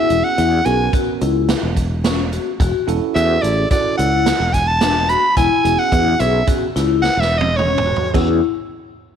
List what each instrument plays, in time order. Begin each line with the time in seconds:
Already playing: tine electric piano B3 C#4 F#4 G#4, vibraphone E4, soprano saxophone E5
0.10 fretless electric bass E1, closed hi-hat
0.24 soprano saxophone F#5
0.38 fretless electric bass E2, vibraphone E4, closed hi-hat
0.64 fretless electric bass B1, tine electric piano B3 C#4 F#4 A#4, vibraphone G#4, soprano saxophone G#5, closed hi-hat
0.93 vibraphone F#4, kick, closed hi-hat
1.21 fretless electric bass C#2, vibraphone E4, closed hi-hat
1.49 snare, closed hi-hat
1.63 fretless electric bass E1
1.77 kick, closed hi-hat
2.04 vibraphone C#4, snare, closed hi-hat
2.33 vibraphone F#4, closed hi-hat
2.60 fretless electric bass E1, vibraphone F#4, kick, closed hi-hat
2.87 fretless electric bass E1, tine electric piano C#4 E4 F#4 A4, closed hi-hat
3.15 fretless electric bass E2, vibraphone F#4, soprano saxophone E5, closed hi-hat
3.42 fretless electric bass A1, vibraphone G#4, soprano saxophone D5, closed hi-hat
3.71 tine electric piano C#4 E4 F#4 A4, vibraphone F#4, soprano saxophone D5, kick, closed hi-hat
3.98 fretless electric bass C#2, vibraphone E4, soprano saxophone F#5, closed hi-hat
4.26 snare, closed hi-hat
4.40 fretless electric bass E1
4.53 soprano saxophone G#5, kick, closed hi-hat
4.68 soprano saxophone A5
4.81 vibraphone D4, snare, closed hi-hat
5.09 vibraphone F#4, soprano saxophone B5, closed hi-hat
5.37 fretless electric bass E1, vibraphone E4, soprano saxophone G#5, kick, closed hi-hat
5.64 fretless electric bass E1, tine electric piano B3 C#4 F#4 G#4, closed hi-hat
5.79 soprano saxophone F#5
5.92 fretless electric bass E2, vibraphone E4, kick, closed hi-hat
6.20 fretless electric bass B1, vibraphone G#4, soprano saxophone E5, closed hi-hat
6.46 tine electric piano B3 C#4 F#4 G#4, vibraphone F#4, kick, closed hi-hat
6.76 fretless electric bass C#2, vibraphone E4, snare, closed hi-hat
7.02 soprano saxophone F#5, snare
7.17 fretless electric bass E1, soprano saxophone E5
7.22 snare
7.38 soprano saxophone D#5, high tom
7.56 vibraphone C#4, soprano saxophone C#5, mid tom
7.78 mid tom
7.86 vibraphone F#4
7.96 floor tom
8.14 fretless electric bass E2, tine electric piano B3 C#4 F#4 G#4, vibraphone E4, kick, crash